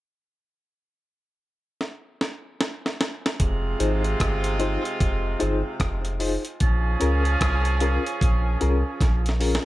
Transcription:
1.81 snare
2.21 snare
2.61 snare
2.86 snare
3.01 snare
3.26 snare
3.40 sub bass F1, horn section C3 G#3 F4, kick, closed hi-hat
3.79 sub bass G#1, reed electric piano D#4 F4 G#4 C5, closed hi-hat
4.04 closed hi-hat
4.20 sub bass G1, kick, cross-stick, closed hi-hat
4.44 closed hi-hat
4.59 reed electric piano D#4 F4 G#4 C5, closed hi-hat
4.85 closed hi-hat
5.00 sub bass F1, kick, closed hi-hat
5.40 sub bass G1, reed electric piano D#4 F4 G#4 C5, closed hi-hat
5.80 sub bass F1, kick, cross-stick, closed hi-hat
6.05 closed hi-hat
6.20 reed electric piano D#4 F4 G#4 C5, open hi-hat
6.45 closed hi-hat
6.60 sub bass A#1, horn section F3 C#4 G#4, kick, closed hi-hat
7.00 sub bass C#2, reed electric piano C#4 F4 G#4 A#4, closed hi-hat
7.25 closed hi-hat
7.41 sub bass C2, kick, cross-stick, closed hi-hat
7.65 closed hi-hat
7.80 reed electric piano C#4 F4 G#4 A#4, closed hi-hat
8.06 closed hi-hat
8.21 sub bass A#1, kick, closed hi-hat
8.61 sub bass C2, reed electric piano C#4 F4 G#4 A#4, closed hi-hat
9.01 sub bass A#1, kick, snare, closed hi-hat
9.26 snare, closed hi-hat
9.40 reed electric piano C#4 F4 G#4 A#4, open hi-hat
9.55 snare

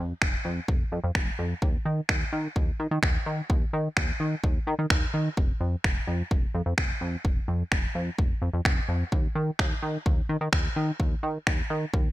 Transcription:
0.00 analog synth bass F2
0.22 analog synth bass F1, finger snap, kick
0.45 analog synth bass F2
0.68 analog synth bass F1, kick
0.92 analog synth bass F2
1.04 analog synth bass F2
1.15 analog synth bass F1, finger snap, kick
1.39 analog synth bass F2
1.62 analog synth bass D#2, kick
1.85 analog synth bass D#3
2.09 analog synth bass D#2, finger snap, kick
2.33 analog synth bass D#3
2.56 analog synth bass D#2, kick
2.80 analog synth bass D#3
2.91 analog synth bass D#3
3.03 analog synth bass D#2, finger snap, kick
3.26 analog synth bass D#3
3.50 analog synth bass D#2, kick
3.73 analog synth bass D#3
3.97 analog synth bass D#2, finger snap, kick
4.20 analog synth bass D#3
4.44 analog synth bass D#2, kick
4.67 analog synth bass D#3
4.79 analog synth bass D#3
4.90 analog synth bass D#2, finger snap, kick
5.14 analog synth bass D#3
5.37 analog synth bass F1, kick
5.61 analog synth bass F2
5.84 analog synth bass F1, finger snap, kick
6.07 analog synth bass F2
6.31 analog synth bass F1, kick
6.54 analog synth bass F2
6.66 analog synth bass F2
6.78 analog synth bass F1, finger snap, kick
7.01 analog synth bass F2
7.25 analog synth bass F1, kick
7.48 analog synth bass F2
7.72 analog synth bass F1, finger snap, kick
7.95 analog synth bass F2
8.19 analog synth bass F1, kick
8.42 analog synth bass F2
8.53 analog synth bass F2
8.65 analog synth bass F1, finger snap, kick
8.89 analog synth bass F2
9.12 analog synth bass D#2, kick
9.35 analog synth bass D#3
9.59 analog synth bass D#2, finger snap, kick
9.82 analog synth bass D#3
10.06 analog synth bass D#2, kick
10.29 analog synth bass D#3
10.41 analog synth bass D#3
10.53 analog synth bass D#2, finger snap, kick
10.76 analog synth bass D#3
11.00 analog synth bass D#2, kick
11.23 analog synth bass D#3
11.47 analog synth bass D#2, finger snap, kick
11.70 analog synth bass D#3
11.94 analog synth bass D#2, kick

